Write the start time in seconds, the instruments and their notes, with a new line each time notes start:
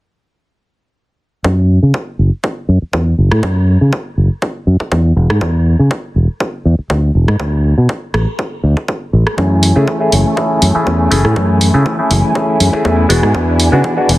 1.44 fingered electric bass F#2, kick
1.83 fingered electric bass C#3
1.94 kick
2.19 fingered electric bass F#1
2.44 kick
2.69 fingered electric bass F#2
2.82 muted fingered electric bass stroke
2.93 fingered electric bass E2, kick
3.18 fingered electric bass F#1
3.31 fingered electric bass A2, cross-stick
3.43 fingered electric bass F#2, kick
3.81 fingered electric bass C#3
3.93 kick
4.17 fingered electric bass F#1
4.42 kick
4.67 fingered electric bass F#2
4.80 muted fingered electric bass stroke, kick
4.92 fingered electric bass E2, kick
5.16 fingered electric bass E1
5.30 fingered electric bass G#2, cross-stick
5.41 fingered electric bass E2, kick
5.79 fingered electric bass C#3
5.91 kick
6.16 fingered electric bass E1
6.40 kick
6.65 fingered electric bass E2
6.79 muted fingered electric bass stroke
6.90 fingered electric bass D2, kick
7.15 fingered electric bass E1
7.28 fingered electric bass G#2, cross-stick
7.40 fingered electric bass D2, kick
7.78 fingered electric bass B2
7.89 kick
8.14 fingered electric bass A1, cross-stick
8.39 kick
8.63 fingered electric bass D2
8.77 kick
8.88 kick
9.13 fingered electric bass A1
9.27 cross-stick
9.37 fingered electric bass F#2, clean electric guitar E3 A3 C#4 G#4, violin section A3 E4 G#5, kick
9.63 open hi-hat
9.76 fingered electric bass C#3, clav A3 C#4 E4 G#4, clean electric guitar A3 C#4
9.87 clean electric guitar E3 A3 C#4 G#4, kick
10.00 clav A3 C#4 E4 G#4
10.12 fingered electric bass F#1, clean electric guitar E3 A3 C#4 G#4, open hi-hat
10.36 clean electric guitar E3 C#4 G#4, clav A3 C#4 E4 G#4, kick
10.61 fingered electric bass F#2, clean electric guitar E3 A3 C#4 G#4, open hi-hat
10.75 clav A3 C#4 E4 G#4, muted fingered electric bass stroke
10.86 fingered electric bass E2, clean electric guitar E3 A3 C#4 G#4, kick
11.11 fingered electric bass F#1, clean electric guitar E3 A3 G#4, clav A3 C#4 E4 G#4, open hi-hat
11.24 fingered electric bass A2, clean electric guitar A3 C#4 G#4, cross-stick
11.36 fingered electric bass F#2, clean electric guitar E3 A3 C#4 G#4, kick
11.61 open hi-hat
11.74 fingered electric bass C#3, clav A3 C#4 E4 G#4, clean electric guitar A3 C#4 G#4
11.85 clean electric guitar E3 A3 C#4 G#4, kick
11.98 clav A3 C#4 E4 G#4, clean electric guitar A3 C#4 G#4
12.10 fingered electric bass F#1, clean electric guitar E3 A3 C#4 G#4, open hi-hat
12.35 clean electric guitar E3 A3 C#4 G#4, clav A3 C#4 E4 G#4, kick
12.59 fingered electric bass F#2, clean electric guitar E3 A3 C#4 G#4, open hi-hat
12.73 clav A3 C#4 E4 G#4, muted fingered electric bass stroke, kick
12.85 fingered electric bass E2, clean electric guitar E3 A3 C#4 G#4, kick
13.09 fingered electric bass E1, clean electric guitar E3 B3 D4 G#4, clav G#3 B3 D4 F#4, violin section D5, open hi-hat
13.22 fingered electric bass G#2, clean electric guitar B3 D4 G#4, cross-stick
13.34 fingered electric bass E2, clean electric guitar E3 B3 D4 G#4, kick
13.60 open hi-hat
13.72 fingered electric bass C#3, clav G#3 B3 D4 F#4, clean electric guitar B3 D4 G#4
13.84 clean electric guitar E3 B3 D4 G#4, kick
13.97 clav G#3 B3 D4 F#4, clean electric guitar B3 D4 G#4
14.08 fingered electric bass E1, clean electric guitar E3 B3 D4 G#4, open hi-hat